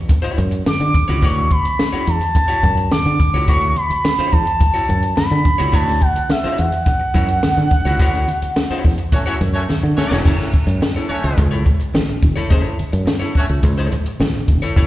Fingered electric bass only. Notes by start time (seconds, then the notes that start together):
0.38 F#2
0.81 D3
1.09 C#2
1.23 D2
1.65 muted fingered electric bass stroke
1.93 muted fingered electric bass stroke
2.07 E2
2.63 F#2
3.06 D3
3.34 C#2
3.48 D2
3.90 muted fingered electric bass stroke
4.18 muted fingered electric bass stroke
4.33 E2
4.89 F#2
5.31 D3
5.60 C#2
5.73 D2
6.16 muted fingered electric bass stroke
6.45 muted fingered electric bass stroke
6.59 E2
7.15 F#2
7.57 D3
7.85 C#2
8.00 D2
8.42 muted fingered electric bass stroke
8.70 muted fingered electric bass stroke
8.85 E2
9.41 F#2
9.83 D3
10.11 E1
10.25 F#1
10.54 muted fingered electric bass stroke
10.67 F#2
11.09 muted fingered electric bass stroke
11.24 C#2
11.38 C#2
11.94 A1
12.23 E1
12.51 F#1
12.79 muted fingered electric bass stroke
12.93 F#2
13.36 muted fingered electric bass stroke
13.50 C#2
13.63 C#2
14.20 A1
14.48 E1
14.76 F#1